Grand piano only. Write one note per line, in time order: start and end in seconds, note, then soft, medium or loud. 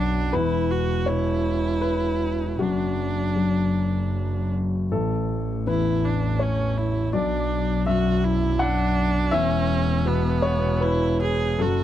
0.00 0.30 B1 medium
0.00 0.33 F#2 soft
0.00 0.36 D5 medium
0.00 0.29 F#5 medium
0.33 2.54 E2 medium
0.33 1.02 B4 medium
1.06 2.58 B2 soft
1.06 1.77 C#5 medium
1.81 2.54 B4 medium
2.59 4.88 F#2 soft
2.59 4.49 F#4 medium
3.36 4.92 F#3 soft
4.91 7.09 A1 soft
4.91 5.63 A4 medium
5.67 7.14 E2 soft
5.67 6.37 B4 medium
6.39 7.09 C#5 medium
7.13 9.28 B1 medium
7.13 7.82 D5 medium
7.86 9.33 F#2 soft
7.86 8.56 E5 medium
8.59 9.28 F#5 loud
9.31 11.56 E2 medium
9.31 10.39 E5 loud
10.05 11.60 B2 medium
10.42 10.78 C#5 loud
10.81 11.55 B4 medium
11.59 11.84 F#2 medium
11.59 11.84 A4 medium